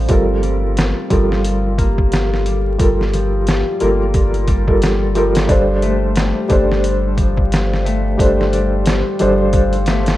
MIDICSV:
0, 0, Header, 1, 6, 480
1, 0, Start_track
1, 0, Key_signature, -2, "minor"
1, 0, Tempo, 674157
1, 72, Time_signature, 4, 2, 24, 8
1, 7243, End_track
2, 0, Start_track
2, 0, Title_t, "Felt piano"
2, 0, Program_c, 0, 0
2, 0, Control_c, 0, 64, 127
2, 0, Note_on_c, 0, 55, 89
2, 0, Note_on_c, 0, 62, 79
2, 0, Note_on_c, 0, 69, 75
2, 0, Note_on_c, 0, 72, 101
2, 62, Note_off_c, 0, 55, 0
2, 62, Note_on_c, 0, 55, 80
2, 69, Note_on_c, 0, 65, 73
2, 80, Note_off_c, 0, 69, 0
2, 80, Note_on_c, 0, 69, 72
2, 83, Note_off_c, 0, 62, 0
2, 83, Control_c, 0, 64, 0
2, 86, Note_off_c, 0, 72, 0
2, 89, Note_on_c, 0, 70, 88
2, 220, Control_c, 0, 64, 127
2, 763, Note_off_c, 0, 55, 0
2, 767, Note_off_c, 0, 65, 0
2, 772, Note_off_c, 0, 69, 0
2, 777, Note_off_c, 0, 70, 0
2, 784, Note_on_c, 0, 55, 83
2, 792, Note_on_c, 0, 65, 71
2, 800, Note_on_c, 0, 69, 71
2, 807, Note_on_c, 0, 70, 81
2, 1964, Note_off_c, 0, 55, 0
2, 1968, Note_off_c, 0, 65, 0
2, 1972, Note_off_c, 0, 69, 0
2, 1976, Note_off_c, 0, 70, 0
2, 1982, Note_on_c, 0, 55, 81
2, 1989, Note_on_c, 0, 65, 76
2, 1996, Note_on_c, 0, 69, 75
2, 2006, Note_on_c, 0, 70, 84
2, 2683, Note_off_c, 0, 55, 0
2, 2687, Note_off_c, 0, 65, 0
2, 2690, Note_off_c, 0, 69, 0
2, 2695, Note_off_c, 0, 70, 0
2, 2709, Note_on_c, 0, 55, 92
2, 2709, Note_on_c, 0, 65, 83
2, 2716, Note_on_c, 0, 69, 76
2, 2721, Note_on_c, 0, 70, 100
2, 2825, Note_off_c, 0, 55, 0
2, 2825, Note_off_c, 0, 65, 0
2, 2828, Note_off_c, 0, 69, 0
2, 2831, Note_off_c, 0, 70, 0
2, 3331, Note_on_c, 0, 55, 76
2, 3335, Note_on_c, 0, 65, 66
2, 3337, Note_on_c, 0, 69, 66
2, 3343, Note_on_c, 0, 70, 88
2, 3647, Note_off_c, 0, 55, 0
2, 3649, Note_off_c, 0, 65, 0
2, 3650, Note_off_c, 0, 69, 0
2, 3653, Note_off_c, 0, 70, 0
2, 3668, Note_on_c, 0, 55, 87
2, 3674, Note_on_c, 0, 65, 80
2, 3678, Note_on_c, 0, 69, 77
2, 3683, Note_on_c, 0, 70, 94
2, 3886, Note_off_c, 0, 55, 0
2, 3889, Note_off_c, 0, 65, 0
2, 3891, Note_off_c, 0, 69, 0
2, 3894, Note_off_c, 0, 70, 0
2, 3898, Note_on_c, 0, 55, 81
2, 3908, Note_on_c, 0, 62, 76
2, 3917, Note_on_c, 0, 69, 70
2, 3921, Control_c, 0, 64, 0
2, 3927, Note_on_c, 0, 72, 92
2, 4062, Control_c, 0, 64, 127
2, 4601, Note_off_c, 0, 55, 0
2, 4606, Note_off_c, 0, 62, 0
2, 4611, Note_off_c, 0, 69, 0
2, 4616, Note_off_c, 0, 72, 0
2, 4617, Note_on_c, 0, 55, 83
2, 4627, Note_on_c, 0, 62, 73
2, 4631, Note_on_c, 0, 69, 69
2, 4644, Note_on_c, 0, 72, 85
2, 5801, Note_off_c, 0, 55, 0
2, 5806, Note_off_c, 0, 62, 0
2, 5808, Note_off_c, 0, 69, 0
2, 5814, Note_off_c, 0, 72, 0
2, 5821, Note_on_c, 0, 55, 81
2, 5831, Note_on_c, 0, 62, 75
2, 5841, Note_on_c, 0, 69, 68
2, 5846, Note_on_c, 0, 72, 89
2, 6523, Note_off_c, 0, 55, 0
2, 6528, Note_off_c, 0, 62, 0
2, 6532, Note_off_c, 0, 69, 0
2, 6535, Note_off_c, 0, 72, 0
2, 6548, Note_on_c, 0, 55, 89
2, 6555, Note_on_c, 0, 62, 85
2, 6558, Note_on_c, 0, 69, 83
2, 6563, Note_on_c, 0, 72, 102
2, 6665, Note_off_c, 0, 55, 0
2, 6668, Note_off_c, 0, 62, 0
2, 6669, Note_off_c, 0, 69, 0
2, 6672, Note_off_c, 0, 72, 0
2, 7243, End_track
3, 0, Start_track
3, 0, Title_t, "Ambient pad"
3, 0, Program_c, 1, 92
3, 0, Note_on_c, 1, 60, 85
3, 0, Note_on_c, 1, 72, 83
3, 78, Note_on_c, 1, 55, 85
3, 81, Note_on_c, 1, 67, 79
3, 84, Note_off_c, 1, 72, 0
3, 85, Note_off_c, 1, 60, 0
3, 7243, Note_off_c, 1, 55, 0
3, 7243, Note_off_c, 1, 67, 0
3, 7243, End_track
4, 0, Start_track
4, 0, Title_t, "Harp"
4, 0, Program_c, 2, 46
4, 0, Note_on_c, 2, 53, 75
4, 0, Note_on_c, 2, 55, 69
4, 0, Note_on_c, 2, 57, 96
4, 108, Note_off_c, 2, 53, 0
4, 108, Note_off_c, 2, 55, 0
4, 305, Note_on_c, 2, 55, 78
4, 788, Note_on_c, 2, 53, 73
4, 1245, Note_off_c, 2, 57, 0
4, 1268, Note_on_c, 2, 58, 100
4, 1741, Note_off_c, 2, 55, 0
4, 1750, Note_on_c, 2, 55, 73
4, 2224, Note_off_c, 2, 53, 0
4, 2233, Note_on_c, 2, 53, 72
4, 2706, Note_off_c, 2, 58, 0
4, 2709, Note_on_c, 2, 58, 98
4, 3182, Note_off_c, 2, 55, 0
4, 3190, Note_on_c, 2, 55, 76
4, 3660, Note_off_c, 2, 53, 0
4, 3668, Note_on_c, 2, 53, 70
4, 3947, Note_off_c, 2, 55, 0
4, 3948, Note_off_c, 2, 53, 0
4, 4146, Note_on_c, 2, 57, 103
4, 4189, Note_off_c, 2, 58, 0
4, 4627, Note_on_c, 2, 55, 75
4, 5108, Note_on_c, 2, 53, 74
4, 5586, Note_off_c, 2, 57, 0
4, 5589, Note_on_c, 2, 57, 99
4, 6060, Note_off_c, 2, 55, 0
4, 6068, Note_on_c, 2, 55, 72
4, 6540, Note_off_c, 2, 53, 0
4, 6548, Note_on_c, 2, 53, 77
4, 7028, Note_off_c, 2, 57, 0
4, 7031, Note_on_c, 2, 57, 96
4, 7243, Note_off_c, 2, 53, 0
4, 7243, Note_off_c, 2, 55, 0
4, 7243, Note_off_c, 2, 57, 0
4, 7243, End_track
5, 0, Start_track
5, 0, Title_t, "Sub bass"
5, 0, Program_c, 3, 38
5, 69, Note_on_c, 3, 31, 101
5, 664, Note_off_c, 3, 31, 0
5, 789, Note_on_c, 3, 31, 93
5, 1971, Note_off_c, 3, 31, 0
5, 1991, Note_on_c, 3, 31, 96
5, 2585, Note_off_c, 3, 31, 0
5, 2716, Note_on_c, 3, 31, 91
5, 3895, Note_off_c, 3, 31, 0
5, 3908, Note_on_c, 3, 31, 97
5, 4504, Note_off_c, 3, 31, 0
5, 4630, Note_on_c, 3, 31, 96
5, 5812, Note_off_c, 3, 31, 0
5, 5836, Note_on_c, 3, 31, 93
5, 6427, Note_off_c, 3, 31, 0
5, 6560, Note_on_c, 3, 31, 90
5, 7243, Note_off_c, 3, 31, 0
5, 7243, End_track
6, 0, Start_track
6, 0, Title_t, "Drums"
6, 61, Note_on_c, 9, 42, 84
6, 67, Note_on_c, 9, 36, 110
6, 133, Note_off_c, 9, 42, 0
6, 138, Note_off_c, 9, 36, 0
6, 306, Note_on_c, 9, 42, 63
6, 377, Note_off_c, 9, 42, 0
6, 548, Note_on_c, 9, 42, 89
6, 559, Note_on_c, 9, 38, 126
6, 619, Note_off_c, 9, 42, 0
6, 630, Note_off_c, 9, 38, 0
6, 786, Note_on_c, 9, 42, 69
6, 788, Note_on_c, 9, 36, 92
6, 857, Note_off_c, 9, 42, 0
6, 859, Note_off_c, 9, 36, 0
6, 940, Note_on_c, 9, 38, 49
6, 1011, Note_off_c, 9, 38, 0
6, 1029, Note_on_c, 9, 42, 91
6, 1100, Note_off_c, 9, 42, 0
6, 1270, Note_on_c, 9, 36, 93
6, 1272, Note_on_c, 9, 42, 67
6, 1341, Note_off_c, 9, 36, 0
6, 1343, Note_off_c, 9, 42, 0
6, 1411, Note_on_c, 9, 36, 99
6, 1482, Note_off_c, 9, 36, 0
6, 1508, Note_on_c, 9, 42, 81
6, 1520, Note_on_c, 9, 38, 107
6, 1580, Note_off_c, 9, 42, 0
6, 1591, Note_off_c, 9, 38, 0
6, 1663, Note_on_c, 9, 38, 42
6, 1734, Note_off_c, 9, 38, 0
6, 1751, Note_on_c, 9, 42, 66
6, 1822, Note_off_c, 9, 42, 0
6, 1990, Note_on_c, 9, 36, 113
6, 1990, Note_on_c, 9, 42, 90
6, 2061, Note_off_c, 9, 36, 0
6, 2061, Note_off_c, 9, 42, 0
6, 2143, Note_on_c, 9, 38, 42
6, 2215, Note_off_c, 9, 38, 0
6, 2233, Note_on_c, 9, 42, 65
6, 2304, Note_off_c, 9, 42, 0
6, 2470, Note_on_c, 9, 42, 89
6, 2482, Note_on_c, 9, 38, 124
6, 2541, Note_off_c, 9, 42, 0
6, 2553, Note_off_c, 9, 38, 0
6, 2708, Note_on_c, 9, 42, 69
6, 2779, Note_off_c, 9, 42, 0
6, 2947, Note_on_c, 9, 42, 88
6, 2949, Note_on_c, 9, 36, 112
6, 3018, Note_off_c, 9, 42, 0
6, 3020, Note_off_c, 9, 36, 0
6, 3090, Note_on_c, 9, 42, 45
6, 3161, Note_off_c, 9, 42, 0
6, 3186, Note_on_c, 9, 42, 65
6, 3189, Note_on_c, 9, 36, 97
6, 3257, Note_off_c, 9, 42, 0
6, 3260, Note_off_c, 9, 36, 0
6, 3330, Note_on_c, 9, 36, 97
6, 3401, Note_off_c, 9, 36, 0
6, 3431, Note_on_c, 9, 42, 77
6, 3443, Note_on_c, 9, 38, 108
6, 3502, Note_off_c, 9, 42, 0
6, 3514, Note_off_c, 9, 38, 0
6, 3669, Note_on_c, 9, 42, 58
6, 3740, Note_off_c, 9, 42, 0
6, 3810, Note_on_c, 9, 42, 81
6, 3821, Note_on_c, 9, 38, 106
6, 3881, Note_off_c, 9, 42, 0
6, 3892, Note_off_c, 9, 38, 0
6, 3908, Note_on_c, 9, 36, 113
6, 3910, Note_on_c, 9, 42, 87
6, 3979, Note_off_c, 9, 36, 0
6, 3981, Note_off_c, 9, 42, 0
6, 4146, Note_on_c, 9, 42, 67
6, 4217, Note_off_c, 9, 42, 0
6, 4383, Note_on_c, 9, 42, 94
6, 4394, Note_on_c, 9, 38, 118
6, 4454, Note_off_c, 9, 42, 0
6, 4465, Note_off_c, 9, 38, 0
6, 4625, Note_on_c, 9, 42, 68
6, 4627, Note_on_c, 9, 36, 96
6, 4697, Note_off_c, 9, 42, 0
6, 4698, Note_off_c, 9, 36, 0
6, 4782, Note_on_c, 9, 38, 49
6, 4853, Note_off_c, 9, 38, 0
6, 4870, Note_on_c, 9, 42, 88
6, 4941, Note_off_c, 9, 42, 0
6, 5109, Note_on_c, 9, 36, 93
6, 5110, Note_on_c, 9, 42, 68
6, 5180, Note_off_c, 9, 36, 0
6, 5181, Note_off_c, 9, 42, 0
6, 5250, Note_on_c, 9, 36, 91
6, 5321, Note_off_c, 9, 36, 0
6, 5355, Note_on_c, 9, 42, 87
6, 5366, Note_on_c, 9, 38, 112
6, 5426, Note_off_c, 9, 42, 0
6, 5437, Note_off_c, 9, 38, 0
6, 5507, Note_on_c, 9, 38, 46
6, 5578, Note_off_c, 9, 38, 0
6, 5599, Note_on_c, 9, 42, 65
6, 5670, Note_off_c, 9, 42, 0
6, 5832, Note_on_c, 9, 36, 111
6, 5838, Note_on_c, 9, 42, 90
6, 5903, Note_off_c, 9, 36, 0
6, 5909, Note_off_c, 9, 42, 0
6, 5986, Note_on_c, 9, 38, 43
6, 6058, Note_off_c, 9, 38, 0
6, 6074, Note_on_c, 9, 42, 62
6, 6145, Note_off_c, 9, 42, 0
6, 6306, Note_on_c, 9, 42, 95
6, 6317, Note_on_c, 9, 38, 126
6, 6377, Note_off_c, 9, 42, 0
6, 6388, Note_off_c, 9, 38, 0
6, 6545, Note_on_c, 9, 42, 68
6, 6616, Note_off_c, 9, 42, 0
6, 6784, Note_on_c, 9, 42, 91
6, 6787, Note_on_c, 9, 36, 117
6, 6855, Note_off_c, 9, 42, 0
6, 6858, Note_off_c, 9, 36, 0
6, 6925, Note_on_c, 9, 42, 45
6, 6997, Note_off_c, 9, 42, 0
6, 7021, Note_on_c, 9, 42, 80
6, 7032, Note_on_c, 9, 38, 101
6, 7092, Note_off_c, 9, 42, 0
6, 7103, Note_off_c, 9, 38, 0
6, 7165, Note_on_c, 9, 42, 75
6, 7176, Note_on_c, 9, 38, 104
6, 7236, Note_off_c, 9, 42, 0
6, 7243, Note_off_c, 9, 38, 0
6, 7243, End_track
0, 0, End_of_file